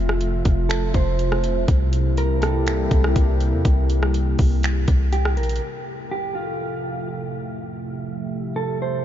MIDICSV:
0, 0, Header, 1, 5, 480
1, 0, Start_track
1, 0, Key_signature, -1, "major"
1, 0, Tempo, 491803
1, 1642, Time_signature, 4, 2, 24, 8
1, 8832, End_track
2, 0, Start_track
2, 0, Title_t, "Clean electric guitar"
2, 0, Program_c, 0, 27
2, 676, Note_on_c, 0, 69, 84
2, 907, Note_off_c, 0, 69, 0
2, 929, Note_on_c, 0, 72, 75
2, 1606, Note_off_c, 0, 72, 0
2, 2128, Note_on_c, 0, 70, 82
2, 2353, Note_off_c, 0, 70, 0
2, 2359, Note_on_c, 0, 69, 83
2, 3041, Note_off_c, 0, 69, 0
2, 5003, Note_on_c, 0, 67, 92
2, 5230, Note_off_c, 0, 67, 0
2, 5243, Note_on_c, 0, 70, 77
2, 5470, Note_off_c, 0, 70, 0
2, 5968, Note_on_c, 0, 67, 81
2, 6193, Note_off_c, 0, 67, 0
2, 6199, Note_on_c, 0, 65, 74
2, 6881, Note_off_c, 0, 65, 0
2, 8356, Note_on_c, 0, 69, 79
2, 8587, Note_off_c, 0, 69, 0
2, 8609, Note_on_c, 0, 72, 75
2, 8832, Note_off_c, 0, 72, 0
2, 8832, End_track
3, 0, Start_track
3, 0, Title_t, "Analog synth pad"
3, 0, Program_c, 1, 89
3, 0, Note_on_c, 1, 48, 84
3, 0, Note_on_c, 1, 53, 77
3, 0, Note_on_c, 1, 57, 77
3, 0, Note_on_c, 1, 65, 89
3, 0, Note_on_c, 1, 76, 78
3, 1604, Note_off_c, 1, 48, 0
3, 1604, Note_off_c, 1, 53, 0
3, 1604, Note_off_c, 1, 57, 0
3, 1604, Note_off_c, 1, 65, 0
3, 1604, Note_off_c, 1, 76, 0
3, 1642, Note_on_c, 1, 55, 74
3, 1642, Note_on_c, 1, 58, 76
3, 1642, Note_on_c, 1, 64, 75
3, 1643, Note_on_c, 1, 48, 83
3, 1643, Note_on_c, 1, 67, 92
3, 5443, Note_off_c, 1, 55, 0
3, 5443, Note_off_c, 1, 58, 0
3, 5443, Note_off_c, 1, 64, 0
3, 5444, Note_off_c, 1, 48, 0
3, 5444, Note_off_c, 1, 67, 0
3, 5481, Note_on_c, 1, 57, 75
3, 5482, Note_on_c, 1, 48, 79
3, 5482, Note_on_c, 1, 53, 71
3, 5482, Note_on_c, 1, 69, 89
3, 5483, Note_on_c, 1, 76, 74
3, 7383, Note_off_c, 1, 69, 0
3, 7402, Note_on_c, 1, 67, 89
3, 8832, Note_off_c, 1, 48, 0
3, 8832, Note_off_c, 1, 53, 0
3, 8832, Note_off_c, 1, 57, 0
3, 8832, Note_off_c, 1, 67, 0
3, 8832, Note_off_c, 1, 76, 0
3, 8832, End_track
4, 0, Start_track
4, 0, Title_t, "808-style bass"
4, 0, Program_c, 2, 38
4, 0, Note_on_c, 2, 29, 112
4, 413, Note_off_c, 2, 29, 0
4, 443, Note_on_c, 2, 29, 103
4, 903, Note_off_c, 2, 29, 0
4, 920, Note_on_c, 2, 29, 107
4, 1612, Note_off_c, 2, 29, 0
4, 1642, Note_on_c, 2, 36, 118
4, 2803, Note_off_c, 2, 36, 0
4, 2841, Note_on_c, 2, 36, 104
4, 3072, Note_off_c, 2, 36, 0
4, 3082, Note_on_c, 2, 36, 112
4, 3443, Note_on_c, 2, 40, 99
4, 3457, Note_off_c, 2, 36, 0
4, 3556, Note_off_c, 2, 40, 0
4, 3562, Note_on_c, 2, 36, 122
4, 4253, Note_off_c, 2, 36, 0
4, 4284, Note_on_c, 2, 36, 102
4, 4744, Note_off_c, 2, 36, 0
4, 4762, Note_on_c, 2, 36, 107
4, 5240, Note_on_c, 2, 34, 102
4, 5255, Note_off_c, 2, 36, 0
4, 5469, Note_off_c, 2, 34, 0
4, 8832, End_track
5, 0, Start_track
5, 0, Title_t, "Drums"
5, 89, Note_on_c, 9, 37, 101
5, 187, Note_off_c, 9, 37, 0
5, 202, Note_on_c, 9, 42, 69
5, 299, Note_off_c, 9, 42, 0
5, 440, Note_on_c, 9, 42, 78
5, 443, Note_on_c, 9, 36, 99
5, 538, Note_off_c, 9, 42, 0
5, 541, Note_off_c, 9, 36, 0
5, 681, Note_on_c, 9, 42, 72
5, 691, Note_on_c, 9, 26, 124
5, 778, Note_off_c, 9, 42, 0
5, 789, Note_off_c, 9, 26, 0
5, 919, Note_on_c, 9, 42, 70
5, 921, Note_on_c, 9, 36, 93
5, 1017, Note_off_c, 9, 42, 0
5, 1018, Note_off_c, 9, 36, 0
5, 1163, Note_on_c, 9, 42, 72
5, 1260, Note_off_c, 9, 42, 0
5, 1288, Note_on_c, 9, 37, 99
5, 1386, Note_off_c, 9, 37, 0
5, 1402, Note_on_c, 9, 42, 74
5, 1500, Note_off_c, 9, 42, 0
5, 1642, Note_on_c, 9, 36, 112
5, 1643, Note_on_c, 9, 42, 78
5, 1739, Note_off_c, 9, 36, 0
5, 1740, Note_off_c, 9, 42, 0
5, 1882, Note_on_c, 9, 42, 89
5, 1980, Note_off_c, 9, 42, 0
5, 2122, Note_on_c, 9, 42, 66
5, 2220, Note_off_c, 9, 42, 0
5, 2361, Note_on_c, 9, 42, 79
5, 2371, Note_on_c, 9, 37, 98
5, 2459, Note_off_c, 9, 42, 0
5, 2469, Note_off_c, 9, 37, 0
5, 2602, Note_on_c, 9, 42, 72
5, 2612, Note_on_c, 9, 26, 122
5, 2700, Note_off_c, 9, 42, 0
5, 2710, Note_off_c, 9, 26, 0
5, 2841, Note_on_c, 9, 42, 72
5, 2842, Note_on_c, 9, 36, 93
5, 2939, Note_off_c, 9, 36, 0
5, 2939, Note_off_c, 9, 42, 0
5, 2969, Note_on_c, 9, 37, 98
5, 3067, Note_off_c, 9, 37, 0
5, 3082, Note_on_c, 9, 36, 97
5, 3084, Note_on_c, 9, 42, 73
5, 3180, Note_off_c, 9, 36, 0
5, 3181, Note_off_c, 9, 42, 0
5, 3323, Note_on_c, 9, 42, 78
5, 3421, Note_off_c, 9, 42, 0
5, 3562, Note_on_c, 9, 36, 107
5, 3563, Note_on_c, 9, 42, 73
5, 3660, Note_off_c, 9, 36, 0
5, 3661, Note_off_c, 9, 42, 0
5, 3803, Note_on_c, 9, 42, 88
5, 3900, Note_off_c, 9, 42, 0
5, 3930, Note_on_c, 9, 37, 100
5, 4027, Note_off_c, 9, 37, 0
5, 4043, Note_on_c, 9, 42, 66
5, 4140, Note_off_c, 9, 42, 0
5, 4281, Note_on_c, 9, 46, 54
5, 4284, Note_on_c, 9, 36, 96
5, 4379, Note_off_c, 9, 46, 0
5, 4381, Note_off_c, 9, 36, 0
5, 4522, Note_on_c, 9, 42, 71
5, 4532, Note_on_c, 9, 26, 124
5, 4619, Note_off_c, 9, 42, 0
5, 4630, Note_off_c, 9, 26, 0
5, 4760, Note_on_c, 9, 42, 71
5, 4761, Note_on_c, 9, 36, 92
5, 4857, Note_off_c, 9, 42, 0
5, 4859, Note_off_c, 9, 36, 0
5, 5002, Note_on_c, 9, 42, 74
5, 5100, Note_off_c, 9, 42, 0
5, 5128, Note_on_c, 9, 37, 103
5, 5225, Note_off_c, 9, 37, 0
5, 5242, Note_on_c, 9, 42, 48
5, 5302, Note_off_c, 9, 42, 0
5, 5302, Note_on_c, 9, 42, 61
5, 5362, Note_off_c, 9, 42, 0
5, 5362, Note_on_c, 9, 42, 69
5, 5423, Note_off_c, 9, 42, 0
5, 5423, Note_on_c, 9, 42, 78
5, 5520, Note_off_c, 9, 42, 0
5, 8832, End_track
0, 0, End_of_file